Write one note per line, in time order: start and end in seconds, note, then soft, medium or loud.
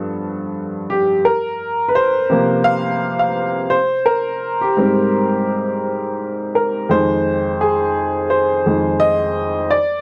0.00 1.26 G2 soft
0.00 1.26 F3 soft
0.00 1.26 B3 medium
0.00 0.49 A4 medium
0.90 1.26 G4 medium
1.25 1.91 A#4 medium
1.89 1.95 B4 medium
1.95 2.62 C5 medium
2.30 3.32 C3 soft
2.30 3.32 F3 soft
2.30 3.33 A#3 medium
2.64 3.17 F5 loud
3.19 3.72 F5 medium
3.70 4.07 C5 medium
4.06 4.63 A#4 medium
4.61 5.99 G4 medium
4.77 5.26 G#2 soft
4.77 5.26 G3 soft
4.77 5.27 C4 medium
6.55 6.87 A#4 medium
6.89 7.38 F2 soft
6.89 7.39 D#3 soft
6.89 7.39 G#3 medium
6.89 7.63 C5 medium
7.61 8.27 G#4 medium
8.30 8.97 C5 medium
8.66 8.97 F2 soft
8.66 8.98 D#3 soft
8.66 8.98 G#3 soft
9.00 9.67 D#5 medium
9.71 10.01 D5 medium